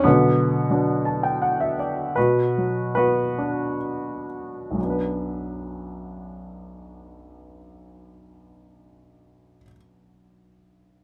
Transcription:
0.04 B2 D3 F#3 B3
0.70 F#3 B3 D4
1.05 A5
1.23 G5
1.42 F#5
1.60 E5
1.79 D5
2.16 B2 F#4 B4
2.58 F#3
2.95 B3 F#4 B4
3.38 D4
4.71 B1 F#2
4.78 F#3
4.82 B3
4.86 D4 B4

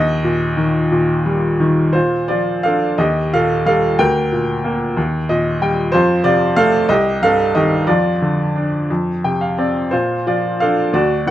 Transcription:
Already playing: D#2 D#5
0.24 A#2
0.57 D#3
0.91 A#2
1.26 G3
1.60 D#3
1.93 A#2 F4 C5
2.28 F3 F4 D5
2.63 D4 A4 F5
2.98 D#2 G4 D#5
3.33 A#2 A4 F5
3.66 G3 A4 F5
3.99 D2 A#4 G5
4.32 A#2
4.65 A#3
4.97 D#2
5.29 A#2 D#5
5.62 G3 G5
5.92 F2 F4 C5
6.24 C3 F4 D5
6.56 A3 A4 F5
6.89 C2 G4 D#5
7.22 G2 A4 F5
7.55 D#3 G4 D#5
7.87 F2 F4 D5
8.22 D3
8.56 D4
8.90 F2
9.24 C3 G5
9.41 F5
9.58 C4 D5
9.91 A#2 F4 C5
10.27 F3 F4 D5
10.60 D4 A4 F5
10.93 D2 F#4 D5
11.27 A2

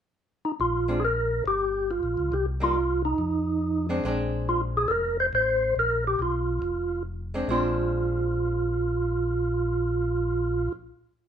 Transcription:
0.45 D#4
0.60 A#1 F4
0.88 G#3 C4 D4
1.00 G#4
1.05 A#4
1.46 G1 G4
1.91 F4
2.03 A#1
2.17 C#2
2.32 C2 G4
2.60 G3 A#3 D#4 F4
3.05 D#4
3.18 F2
3.89 G#3 C4 D4
4.04 A#1 G#3 C4 D4
4.49 F4
4.77 G#4
4.88 F1 A4 A#4
5.20 C5
5.33 A1 C5
5.76 A#1 A#4
6.07 G4
6.19 B1 F4
6.62 F1
7.34 G#3 C4 D4
7.47 A#1 G#3 C4 F4
7.52 D4

